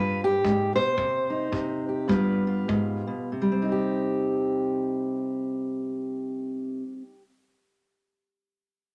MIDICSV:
0, 0, Header, 1, 3, 480
1, 0, Start_track
1, 0, Key_signature, -3, "minor"
1, 0, Tempo, 531444
1, 890, Time_signature, 4, 2, 24, 8
1, 1383, Tempo, 581395
1, 2343, Tempo, 641026
1, 7027, End_track
2, 0, Start_track
2, 0, Title_t, "Steel-string acoustic guitar"
2, 0, Program_c, 0, 25
2, 0, Note_on_c, 0, 43, 70
2, 0, Note_on_c, 0, 65, 79
2, 0, Note_on_c, 0, 71, 104
2, 214, Note_off_c, 0, 71, 0
2, 218, Note_on_c, 0, 67, 92
2, 230, Note_off_c, 0, 65, 0
2, 394, Note_off_c, 0, 43, 0
2, 398, Note_on_c, 0, 44, 67
2, 679, Note_off_c, 0, 44, 0
2, 679, Note_off_c, 0, 67, 0
2, 682, Note_on_c, 0, 72, 107
2, 683, Note_on_c, 0, 47, 61
2, 874, Note_on_c, 0, 48, 68
2, 878, Note_off_c, 0, 47, 0
2, 1174, Note_on_c, 0, 63, 56
2, 1361, Note_off_c, 0, 48, 0
2, 1372, Note_on_c, 0, 48, 68
2, 1660, Note_off_c, 0, 72, 0
2, 1675, Note_on_c, 0, 67, 47
2, 1822, Note_off_c, 0, 63, 0
2, 1833, Note_on_c, 0, 43, 76
2, 1841, Note_on_c, 0, 55, 59
2, 1843, Note_on_c, 0, 59, 56
2, 1847, Note_off_c, 0, 48, 0
2, 1850, Note_on_c, 0, 65, 63
2, 1851, Note_off_c, 0, 67, 0
2, 1854, Note_on_c, 0, 71, 64
2, 2148, Note_off_c, 0, 65, 0
2, 2158, Note_on_c, 0, 65, 60
2, 2329, Note_off_c, 0, 43, 0
2, 2333, Note_on_c, 0, 44, 65
2, 2624, Note_off_c, 0, 44, 0
2, 2627, Note_on_c, 0, 47, 64
2, 2785, Note_off_c, 0, 55, 0
2, 2785, Note_off_c, 0, 59, 0
2, 2790, Note_off_c, 0, 71, 0
2, 2792, Note_off_c, 0, 65, 0
2, 2811, Note_off_c, 0, 47, 0
2, 2812, Note_on_c, 0, 48, 58
2, 2884, Note_on_c, 0, 55, 60
2, 2959, Note_on_c, 0, 60, 53
2, 3037, Note_on_c, 0, 63, 60
2, 3109, Note_on_c, 0, 67, 54
2, 5433, Note_off_c, 0, 48, 0
2, 5505, Note_off_c, 0, 55, 0
2, 5580, Note_off_c, 0, 60, 0
2, 5657, Note_off_c, 0, 63, 0
2, 5730, Note_off_c, 0, 67, 0
2, 7027, End_track
3, 0, Start_track
3, 0, Title_t, "Drums"
3, 403, Note_on_c, 9, 36, 64
3, 493, Note_off_c, 9, 36, 0
3, 883, Note_on_c, 9, 36, 71
3, 973, Note_off_c, 9, 36, 0
3, 1378, Note_on_c, 9, 36, 63
3, 1461, Note_off_c, 9, 36, 0
3, 1847, Note_on_c, 9, 36, 72
3, 1930, Note_off_c, 9, 36, 0
3, 2339, Note_on_c, 9, 36, 67
3, 2415, Note_off_c, 9, 36, 0
3, 7027, End_track
0, 0, End_of_file